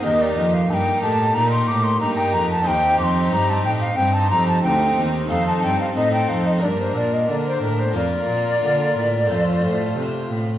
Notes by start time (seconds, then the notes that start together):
0.00 D#2 A#3 D#4 G4
0.04 D#2 D#4 G4 D#5
0.22 D5
0.37 F2 D#5
0.54 F5
0.69 G2 A#3 D#4 G4 A5
0.73 G5
1.02 A2 A5
1.34 A#2 A#3 D#4 G4 A#5
1.51 C6
1.68 A2 D6
1.84 C6
2.00 G2 A#3 D#4 G4 A#5
2.17 G5
2.33 F2 A#5
2.51 A5
2.61 C4 D#4 G4
2.66 D#2 C4 D#4 G4 G5
2.99 F2 D6
3.04 C6
3.31 G2 A#5
3.49 A5
3.64 A2 G5
3.81 F5
3.96 G2 C4 D#4 G4 G5
4.14 A5
4.31 F2 A#5
4.48 A5
4.63 D2 C4 D#4 G4 G5
4.96 D#2
5.26 F2 C4 D#4 A4 F5
5.30 F2
5.47 A5
5.62 G2 G5
5.81 F5
5.95 A2 C4 D#4 A4 D#5
6.13 G5
6.28 F2 F5
6.46 D#5
6.56 A#3 D4 A#4
6.61 G2 A#3 D4 A#4 D5
6.79 C5
6.94 A#2 D5
7.13 D#5
7.27 D3 A#3 D4 A#4 D5
7.46 C5
7.61 A2 A#4
7.79 C5
7.90 A#3 F4 A#4
7.94 F2 A#3 F4 A#4 D5
8.28 A#2
8.62 D3
8.96 A2
9.26 F2 A3 F4 C5
9.30 F2 A3 F4
9.63 A2
9.96 C3
10.30 A2